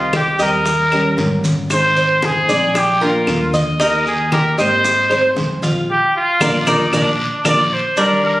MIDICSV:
0, 0, Header, 1, 7, 480
1, 0, Start_track
1, 0, Tempo, 522193
1, 1567, Time_signature, 4, 2, 24, 8
1, 7721, End_track
2, 0, Start_track
2, 0, Title_t, "Cuban tres"
2, 0, Program_c, 0, 25
2, 0, Note_on_c, 0, 63, 86
2, 106, Note_off_c, 0, 63, 0
2, 120, Note_on_c, 0, 67, 71
2, 355, Note_off_c, 0, 67, 0
2, 361, Note_on_c, 0, 75, 77
2, 829, Note_off_c, 0, 75, 0
2, 845, Note_on_c, 0, 70, 77
2, 1312, Note_off_c, 0, 70, 0
2, 1807, Note_on_c, 0, 72, 77
2, 2274, Note_off_c, 0, 72, 0
2, 2289, Note_on_c, 0, 74, 70
2, 2756, Note_off_c, 0, 74, 0
2, 2771, Note_on_c, 0, 70, 73
2, 3237, Note_off_c, 0, 70, 0
2, 3251, Note_on_c, 0, 75, 73
2, 3484, Note_off_c, 0, 75, 0
2, 3491, Note_on_c, 0, 63, 80
2, 3957, Note_off_c, 0, 63, 0
2, 3975, Note_on_c, 0, 67, 76
2, 4206, Note_off_c, 0, 67, 0
2, 4213, Note_on_c, 0, 75, 76
2, 4678, Note_off_c, 0, 75, 0
2, 4695, Note_on_c, 0, 72, 74
2, 5159, Note_off_c, 0, 72, 0
2, 5174, Note_on_c, 0, 65, 73
2, 5406, Note_off_c, 0, 65, 0
2, 5891, Note_on_c, 0, 65, 110
2, 5896, Note_on_c, 0, 70, 95
2, 5900, Note_on_c, 0, 74, 79
2, 6045, Note_off_c, 0, 65, 0
2, 6046, Note_off_c, 0, 70, 0
2, 6046, Note_off_c, 0, 74, 0
2, 6129, Note_on_c, 0, 74, 91
2, 6132, Note_on_c, 0, 70, 88
2, 6138, Note_on_c, 0, 65, 76
2, 6284, Note_off_c, 0, 65, 0
2, 6284, Note_off_c, 0, 70, 0
2, 6284, Note_off_c, 0, 74, 0
2, 6368, Note_on_c, 0, 65, 82
2, 6372, Note_on_c, 0, 70, 80
2, 6373, Note_on_c, 0, 74, 91
2, 6522, Note_off_c, 0, 74, 0
2, 6523, Note_off_c, 0, 65, 0
2, 6523, Note_off_c, 0, 70, 0
2, 6846, Note_on_c, 0, 65, 90
2, 6851, Note_on_c, 0, 70, 87
2, 6854, Note_on_c, 0, 74, 76
2, 7001, Note_off_c, 0, 65, 0
2, 7002, Note_off_c, 0, 70, 0
2, 7002, Note_off_c, 0, 74, 0
2, 7326, Note_on_c, 0, 62, 94
2, 7721, Note_off_c, 0, 62, 0
2, 7721, End_track
3, 0, Start_track
3, 0, Title_t, "Trumpet"
3, 0, Program_c, 1, 56
3, 0, Note_on_c, 1, 65, 73
3, 114, Note_off_c, 1, 65, 0
3, 143, Note_on_c, 1, 67, 97
3, 357, Note_off_c, 1, 67, 0
3, 386, Note_on_c, 1, 70, 100
3, 1060, Note_off_c, 1, 70, 0
3, 1582, Note_on_c, 1, 72, 106
3, 2063, Note_on_c, 1, 68, 102
3, 2077, Note_off_c, 1, 72, 0
3, 2544, Note_on_c, 1, 67, 90
3, 2558, Note_off_c, 1, 68, 0
3, 2780, Note_on_c, 1, 65, 78
3, 2794, Note_off_c, 1, 67, 0
3, 3256, Note_off_c, 1, 65, 0
3, 3499, Note_on_c, 1, 70, 90
3, 3719, Note_off_c, 1, 70, 0
3, 3740, Note_on_c, 1, 68, 80
3, 3960, Note_off_c, 1, 68, 0
3, 3976, Note_on_c, 1, 70, 97
3, 4198, Note_off_c, 1, 70, 0
3, 4219, Note_on_c, 1, 72, 109
3, 4899, Note_off_c, 1, 72, 0
3, 5425, Note_on_c, 1, 67, 97
3, 5642, Note_off_c, 1, 67, 0
3, 5664, Note_on_c, 1, 65, 92
3, 6139, Note_on_c, 1, 63, 81
3, 6152, Note_off_c, 1, 65, 0
3, 6374, Note_off_c, 1, 63, 0
3, 6383, Note_on_c, 1, 62, 80
3, 6822, Note_off_c, 1, 62, 0
3, 6865, Note_on_c, 1, 74, 99
3, 7107, Note_on_c, 1, 72, 86
3, 7120, Note_off_c, 1, 74, 0
3, 7344, Note_on_c, 1, 70, 93
3, 7358, Note_off_c, 1, 72, 0
3, 7574, Note_off_c, 1, 70, 0
3, 7583, Note_on_c, 1, 70, 77
3, 7721, Note_off_c, 1, 70, 0
3, 7721, End_track
4, 0, Start_track
4, 0, Title_t, "Nylon-string guitar"
4, 0, Program_c, 2, 24
4, 0, Note_on_c, 2, 48, 59
4, 0, Note_on_c, 2, 51, 72
4, 0, Note_on_c, 2, 55, 67
4, 0, Note_on_c, 2, 60, 71
4, 0, Note_on_c, 2, 67, 75
4, 345, Note_off_c, 2, 67, 0
4, 349, Note_off_c, 2, 48, 0
4, 352, Note_off_c, 2, 51, 0
4, 352, Note_off_c, 2, 60, 0
4, 354, Note_off_c, 2, 55, 0
4, 356, Note_on_c, 2, 67, 71
4, 363, Note_on_c, 2, 60, 58
4, 369, Note_on_c, 2, 55, 61
4, 376, Note_on_c, 2, 51, 62
4, 591, Note_off_c, 2, 67, 0
4, 593, Note_off_c, 2, 51, 0
4, 594, Note_off_c, 2, 60, 0
4, 595, Note_off_c, 2, 55, 0
4, 840, Note_on_c, 2, 67, 60
4, 852, Note_on_c, 2, 61, 52
4, 862, Note_on_c, 2, 55, 48
4, 1074, Note_off_c, 2, 67, 0
4, 1080, Note_off_c, 2, 55, 0
4, 1080, Note_off_c, 2, 61, 0
4, 1083, Note_on_c, 2, 51, 46
4, 1091, Note_on_c, 2, 55, 48
4, 1099, Note_on_c, 2, 61, 49
4, 1106, Note_on_c, 2, 67, 44
4, 1556, Note_off_c, 2, 51, 0
4, 1560, Note_off_c, 2, 55, 0
4, 1564, Note_off_c, 2, 61, 0
4, 1568, Note_off_c, 2, 67, 0
4, 1568, Note_on_c, 2, 51, 61
4, 1574, Note_on_c, 2, 56, 69
4, 1578, Note_on_c, 2, 60, 73
4, 1585, Note_on_c, 2, 63, 81
4, 1587, Note_on_c, 2, 68, 67
4, 2273, Note_off_c, 2, 68, 0
4, 2279, Note_off_c, 2, 63, 0
4, 2280, Note_off_c, 2, 51, 0
4, 2283, Note_off_c, 2, 56, 0
4, 2284, Note_on_c, 2, 68, 67
4, 2285, Note_off_c, 2, 60, 0
4, 2290, Note_on_c, 2, 63, 59
4, 2297, Note_on_c, 2, 60, 64
4, 2306, Note_on_c, 2, 56, 52
4, 2518, Note_off_c, 2, 68, 0
4, 2520, Note_off_c, 2, 63, 0
4, 2524, Note_off_c, 2, 60, 0
4, 2525, Note_off_c, 2, 56, 0
4, 2764, Note_on_c, 2, 65, 66
4, 2778, Note_on_c, 2, 62, 59
4, 2785, Note_on_c, 2, 58, 55
4, 2998, Note_off_c, 2, 65, 0
4, 3002, Note_off_c, 2, 58, 0
4, 3005, Note_off_c, 2, 62, 0
4, 3007, Note_on_c, 2, 50, 42
4, 3013, Note_on_c, 2, 58, 44
4, 3020, Note_on_c, 2, 62, 46
4, 3027, Note_on_c, 2, 65, 54
4, 3480, Note_off_c, 2, 50, 0
4, 3483, Note_off_c, 2, 58, 0
4, 3484, Note_on_c, 2, 51, 71
4, 3486, Note_off_c, 2, 62, 0
4, 3490, Note_off_c, 2, 65, 0
4, 3494, Note_on_c, 2, 58, 72
4, 3500, Note_on_c, 2, 63, 70
4, 3507, Note_on_c, 2, 67, 71
4, 4198, Note_off_c, 2, 67, 0
4, 4199, Note_off_c, 2, 51, 0
4, 4204, Note_off_c, 2, 58, 0
4, 4207, Note_off_c, 2, 63, 0
4, 4209, Note_on_c, 2, 67, 71
4, 4221, Note_on_c, 2, 63, 62
4, 4231, Note_on_c, 2, 58, 57
4, 4441, Note_off_c, 2, 67, 0
4, 4447, Note_off_c, 2, 63, 0
4, 4449, Note_off_c, 2, 58, 0
4, 4684, Note_on_c, 2, 68, 62
4, 4693, Note_on_c, 2, 63, 64
4, 4699, Note_on_c, 2, 60, 61
4, 4707, Note_on_c, 2, 56, 54
4, 4913, Note_off_c, 2, 56, 0
4, 4919, Note_off_c, 2, 68, 0
4, 4921, Note_off_c, 2, 60, 0
4, 4923, Note_off_c, 2, 63, 0
4, 4924, Note_on_c, 2, 56, 47
4, 4933, Note_on_c, 2, 60, 54
4, 4938, Note_on_c, 2, 63, 53
4, 4945, Note_on_c, 2, 68, 55
4, 5398, Note_off_c, 2, 56, 0
4, 5402, Note_off_c, 2, 60, 0
4, 5405, Note_off_c, 2, 63, 0
4, 5408, Note_off_c, 2, 68, 0
4, 5889, Note_on_c, 2, 58, 102
4, 5892, Note_on_c, 2, 62, 91
4, 5894, Note_on_c, 2, 65, 98
4, 6043, Note_off_c, 2, 65, 0
4, 6044, Note_off_c, 2, 58, 0
4, 6044, Note_off_c, 2, 62, 0
4, 6126, Note_on_c, 2, 58, 87
4, 6132, Note_on_c, 2, 62, 82
4, 6138, Note_on_c, 2, 65, 90
4, 6283, Note_off_c, 2, 58, 0
4, 6284, Note_off_c, 2, 62, 0
4, 6284, Note_off_c, 2, 65, 0
4, 6367, Note_on_c, 2, 58, 93
4, 6370, Note_on_c, 2, 62, 97
4, 6371, Note_on_c, 2, 65, 90
4, 6522, Note_off_c, 2, 58, 0
4, 6522, Note_off_c, 2, 62, 0
4, 6522, Note_off_c, 2, 65, 0
4, 6845, Note_on_c, 2, 58, 85
4, 6847, Note_on_c, 2, 62, 87
4, 6849, Note_on_c, 2, 65, 81
4, 6999, Note_off_c, 2, 62, 0
4, 6999, Note_off_c, 2, 65, 0
4, 7000, Note_off_c, 2, 58, 0
4, 7319, Note_on_c, 2, 51, 67
4, 7327, Note_on_c, 2, 55, 66
4, 7334, Note_on_c, 2, 62, 77
4, 7339, Note_on_c, 2, 67, 74
4, 7721, Note_off_c, 2, 51, 0
4, 7721, Note_off_c, 2, 55, 0
4, 7721, Note_off_c, 2, 62, 0
4, 7721, Note_off_c, 2, 67, 0
4, 7721, End_track
5, 0, Start_track
5, 0, Title_t, "Upright bass"
5, 0, Program_c, 3, 32
5, 0, Note_on_c, 3, 36, 93
5, 298, Note_off_c, 3, 36, 0
5, 356, Note_on_c, 3, 39, 91
5, 1045, Note_off_c, 3, 39, 0
5, 1076, Note_on_c, 3, 32, 95
5, 2224, Note_off_c, 3, 32, 0
5, 2287, Note_on_c, 3, 34, 88
5, 2973, Note_off_c, 3, 34, 0
5, 3010, Note_on_c, 3, 39, 88
5, 4151, Note_off_c, 3, 39, 0
5, 4206, Note_on_c, 3, 32, 97
5, 4892, Note_off_c, 3, 32, 0
5, 4928, Note_on_c, 3, 34, 93
5, 5376, Note_off_c, 3, 34, 0
5, 5886, Note_on_c, 3, 34, 95
5, 6066, Note_off_c, 3, 34, 0
5, 6125, Note_on_c, 3, 34, 94
5, 6306, Note_off_c, 3, 34, 0
5, 6364, Note_on_c, 3, 34, 92
5, 6545, Note_off_c, 3, 34, 0
5, 6840, Note_on_c, 3, 34, 89
5, 7021, Note_off_c, 3, 34, 0
5, 7721, End_track
6, 0, Start_track
6, 0, Title_t, "Muted nylon-string guitar strokes"
6, 604, Note_on_c, 9, 29, 58
6, 696, Note_off_c, 9, 29, 0
6, 2529, Note_on_c, 9, 29, 59
6, 2621, Note_off_c, 9, 29, 0
6, 4449, Note_on_c, 9, 29, 60
6, 4541, Note_off_c, 9, 29, 0
6, 7721, End_track
7, 0, Start_track
7, 0, Title_t, "Drums"
7, 120, Note_on_c, 9, 63, 91
7, 121, Note_on_c, 9, 73, 67
7, 122, Note_on_c, 9, 70, 27
7, 123, Note_on_c, 9, 60, 53
7, 123, Note_on_c, 9, 75, 62
7, 212, Note_off_c, 9, 63, 0
7, 213, Note_off_c, 9, 73, 0
7, 214, Note_off_c, 9, 70, 0
7, 214, Note_off_c, 9, 75, 0
7, 215, Note_off_c, 9, 60, 0
7, 361, Note_on_c, 9, 70, 71
7, 362, Note_on_c, 9, 73, 64
7, 363, Note_on_c, 9, 63, 35
7, 364, Note_on_c, 9, 60, 37
7, 453, Note_off_c, 9, 70, 0
7, 454, Note_off_c, 9, 73, 0
7, 455, Note_off_c, 9, 63, 0
7, 456, Note_off_c, 9, 60, 0
7, 601, Note_on_c, 9, 74, 66
7, 603, Note_on_c, 9, 60, 70
7, 605, Note_on_c, 9, 70, 83
7, 606, Note_on_c, 9, 63, 33
7, 692, Note_off_c, 9, 74, 0
7, 695, Note_off_c, 9, 60, 0
7, 697, Note_off_c, 9, 70, 0
7, 698, Note_off_c, 9, 63, 0
7, 842, Note_on_c, 9, 60, 34
7, 845, Note_on_c, 9, 75, 62
7, 846, Note_on_c, 9, 63, 36
7, 848, Note_on_c, 9, 70, 27
7, 934, Note_off_c, 9, 60, 0
7, 937, Note_off_c, 9, 75, 0
7, 938, Note_off_c, 9, 63, 0
7, 939, Note_off_c, 9, 70, 0
7, 1084, Note_on_c, 9, 60, 33
7, 1084, Note_on_c, 9, 61, 79
7, 1085, Note_on_c, 9, 70, 30
7, 1085, Note_on_c, 9, 73, 78
7, 1088, Note_on_c, 9, 63, 78
7, 1176, Note_off_c, 9, 60, 0
7, 1176, Note_off_c, 9, 61, 0
7, 1177, Note_off_c, 9, 70, 0
7, 1177, Note_off_c, 9, 73, 0
7, 1179, Note_off_c, 9, 63, 0
7, 1325, Note_on_c, 9, 63, 82
7, 1326, Note_on_c, 9, 73, 64
7, 1328, Note_on_c, 9, 70, 73
7, 1417, Note_off_c, 9, 63, 0
7, 1418, Note_off_c, 9, 73, 0
7, 1420, Note_off_c, 9, 70, 0
7, 1565, Note_on_c, 9, 60, 65
7, 1565, Note_on_c, 9, 70, 82
7, 1567, Note_on_c, 9, 74, 65
7, 1568, Note_on_c, 9, 63, 35
7, 1569, Note_on_c, 9, 75, 68
7, 1657, Note_off_c, 9, 60, 0
7, 1657, Note_off_c, 9, 70, 0
7, 1659, Note_off_c, 9, 74, 0
7, 1660, Note_off_c, 9, 63, 0
7, 1661, Note_off_c, 9, 75, 0
7, 1805, Note_on_c, 9, 70, 27
7, 1806, Note_on_c, 9, 60, 35
7, 1806, Note_on_c, 9, 63, 34
7, 1897, Note_off_c, 9, 70, 0
7, 1898, Note_off_c, 9, 60, 0
7, 1898, Note_off_c, 9, 63, 0
7, 2045, Note_on_c, 9, 63, 99
7, 2046, Note_on_c, 9, 73, 63
7, 2047, Note_on_c, 9, 60, 54
7, 2051, Note_on_c, 9, 70, 29
7, 2137, Note_off_c, 9, 63, 0
7, 2138, Note_off_c, 9, 73, 0
7, 2139, Note_off_c, 9, 60, 0
7, 2143, Note_off_c, 9, 70, 0
7, 2287, Note_on_c, 9, 63, 32
7, 2288, Note_on_c, 9, 73, 64
7, 2290, Note_on_c, 9, 60, 34
7, 2290, Note_on_c, 9, 70, 70
7, 2379, Note_off_c, 9, 63, 0
7, 2380, Note_off_c, 9, 73, 0
7, 2382, Note_off_c, 9, 60, 0
7, 2382, Note_off_c, 9, 70, 0
7, 2530, Note_on_c, 9, 60, 74
7, 2530, Note_on_c, 9, 63, 34
7, 2530, Note_on_c, 9, 74, 68
7, 2530, Note_on_c, 9, 75, 57
7, 2534, Note_on_c, 9, 70, 87
7, 2622, Note_off_c, 9, 60, 0
7, 2622, Note_off_c, 9, 63, 0
7, 2622, Note_off_c, 9, 74, 0
7, 2622, Note_off_c, 9, 75, 0
7, 2626, Note_off_c, 9, 70, 0
7, 2769, Note_on_c, 9, 60, 36
7, 2769, Note_on_c, 9, 63, 36
7, 2774, Note_on_c, 9, 70, 27
7, 2861, Note_off_c, 9, 60, 0
7, 2861, Note_off_c, 9, 63, 0
7, 2866, Note_off_c, 9, 70, 0
7, 3007, Note_on_c, 9, 60, 36
7, 3007, Note_on_c, 9, 61, 81
7, 3008, Note_on_c, 9, 75, 63
7, 3010, Note_on_c, 9, 73, 72
7, 3012, Note_on_c, 9, 63, 37
7, 3014, Note_on_c, 9, 70, 30
7, 3099, Note_off_c, 9, 60, 0
7, 3099, Note_off_c, 9, 61, 0
7, 3100, Note_off_c, 9, 75, 0
7, 3102, Note_off_c, 9, 73, 0
7, 3104, Note_off_c, 9, 63, 0
7, 3106, Note_off_c, 9, 70, 0
7, 3249, Note_on_c, 9, 63, 78
7, 3254, Note_on_c, 9, 73, 67
7, 3255, Note_on_c, 9, 70, 63
7, 3341, Note_off_c, 9, 63, 0
7, 3346, Note_off_c, 9, 73, 0
7, 3347, Note_off_c, 9, 70, 0
7, 3490, Note_on_c, 9, 60, 68
7, 3491, Note_on_c, 9, 74, 65
7, 3498, Note_on_c, 9, 70, 79
7, 3582, Note_off_c, 9, 60, 0
7, 3583, Note_off_c, 9, 74, 0
7, 3590, Note_off_c, 9, 70, 0
7, 3732, Note_on_c, 9, 60, 36
7, 3734, Note_on_c, 9, 63, 35
7, 3738, Note_on_c, 9, 70, 28
7, 3824, Note_off_c, 9, 60, 0
7, 3826, Note_off_c, 9, 63, 0
7, 3830, Note_off_c, 9, 70, 0
7, 3970, Note_on_c, 9, 60, 52
7, 3970, Note_on_c, 9, 75, 64
7, 3973, Note_on_c, 9, 63, 96
7, 3975, Note_on_c, 9, 73, 67
7, 3976, Note_on_c, 9, 70, 26
7, 4062, Note_off_c, 9, 60, 0
7, 4062, Note_off_c, 9, 75, 0
7, 4065, Note_off_c, 9, 63, 0
7, 4067, Note_off_c, 9, 73, 0
7, 4068, Note_off_c, 9, 70, 0
7, 4212, Note_on_c, 9, 60, 34
7, 4213, Note_on_c, 9, 63, 35
7, 4214, Note_on_c, 9, 73, 68
7, 4217, Note_on_c, 9, 70, 72
7, 4304, Note_off_c, 9, 60, 0
7, 4305, Note_off_c, 9, 63, 0
7, 4306, Note_off_c, 9, 73, 0
7, 4309, Note_off_c, 9, 70, 0
7, 4453, Note_on_c, 9, 63, 32
7, 4454, Note_on_c, 9, 60, 71
7, 4454, Note_on_c, 9, 74, 71
7, 4457, Note_on_c, 9, 70, 86
7, 4545, Note_off_c, 9, 63, 0
7, 4546, Note_off_c, 9, 60, 0
7, 4546, Note_off_c, 9, 74, 0
7, 4549, Note_off_c, 9, 70, 0
7, 4690, Note_on_c, 9, 63, 36
7, 4692, Note_on_c, 9, 75, 61
7, 4693, Note_on_c, 9, 60, 32
7, 4699, Note_on_c, 9, 70, 26
7, 4782, Note_off_c, 9, 63, 0
7, 4784, Note_off_c, 9, 75, 0
7, 4785, Note_off_c, 9, 60, 0
7, 4791, Note_off_c, 9, 70, 0
7, 4931, Note_on_c, 9, 63, 82
7, 4932, Note_on_c, 9, 73, 70
7, 4933, Note_on_c, 9, 60, 33
7, 4933, Note_on_c, 9, 61, 76
7, 4938, Note_on_c, 9, 70, 28
7, 5023, Note_off_c, 9, 63, 0
7, 5024, Note_off_c, 9, 60, 0
7, 5024, Note_off_c, 9, 61, 0
7, 5024, Note_off_c, 9, 73, 0
7, 5030, Note_off_c, 9, 70, 0
7, 5169, Note_on_c, 9, 63, 83
7, 5173, Note_on_c, 9, 73, 73
7, 5177, Note_on_c, 9, 70, 68
7, 5261, Note_off_c, 9, 63, 0
7, 5264, Note_off_c, 9, 73, 0
7, 5268, Note_off_c, 9, 70, 0
7, 5888, Note_on_c, 9, 63, 96
7, 5891, Note_on_c, 9, 74, 98
7, 5892, Note_on_c, 9, 60, 91
7, 5892, Note_on_c, 9, 75, 96
7, 5895, Note_on_c, 9, 70, 97
7, 5979, Note_off_c, 9, 63, 0
7, 5982, Note_off_c, 9, 74, 0
7, 5983, Note_off_c, 9, 60, 0
7, 5983, Note_off_c, 9, 75, 0
7, 5987, Note_off_c, 9, 70, 0
7, 6125, Note_on_c, 9, 63, 89
7, 6129, Note_on_c, 9, 74, 89
7, 6131, Note_on_c, 9, 60, 102
7, 6131, Note_on_c, 9, 75, 93
7, 6132, Note_on_c, 9, 70, 102
7, 6217, Note_off_c, 9, 63, 0
7, 6221, Note_off_c, 9, 74, 0
7, 6222, Note_off_c, 9, 75, 0
7, 6223, Note_off_c, 9, 60, 0
7, 6224, Note_off_c, 9, 70, 0
7, 6367, Note_on_c, 9, 74, 99
7, 6368, Note_on_c, 9, 63, 98
7, 6368, Note_on_c, 9, 75, 87
7, 6371, Note_on_c, 9, 70, 97
7, 6373, Note_on_c, 9, 60, 96
7, 6459, Note_off_c, 9, 74, 0
7, 6460, Note_off_c, 9, 63, 0
7, 6460, Note_off_c, 9, 75, 0
7, 6463, Note_off_c, 9, 70, 0
7, 6465, Note_off_c, 9, 60, 0
7, 6847, Note_on_c, 9, 63, 108
7, 6847, Note_on_c, 9, 74, 92
7, 6849, Note_on_c, 9, 75, 102
7, 6851, Note_on_c, 9, 70, 97
7, 6852, Note_on_c, 9, 60, 92
7, 6939, Note_off_c, 9, 63, 0
7, 6939, Note_off_c, 9, 74, 0
7, 6941, Note_off_c, 9, 75, 0
7, 6943, Note_off_c, 9, 70, 0
7, 6944, Note_off_c, 9, 60, 0
7, 7325, Note_on_c, 9, 74, 66
7, 7327, Note_on_c, 9, 70, 77
7, 7329, Note_on_c, 9, 63, 37
7, 7333, Note_on_c, 9, 60, 64
7, 7417, Note_off_c, 9, 74, 0
7, 7418, Note_off_c, 9, 70, 0
7, 7421, Note_off_c, 9, 63, 0
7, 7425, Note_off_c, 9, 60, 0
7, 7564, Note_on_c, 9, 63, 34
7, 7655, Note_off_c, 9, 63, 0
7, 7721, End_track
0, 0, End_of_file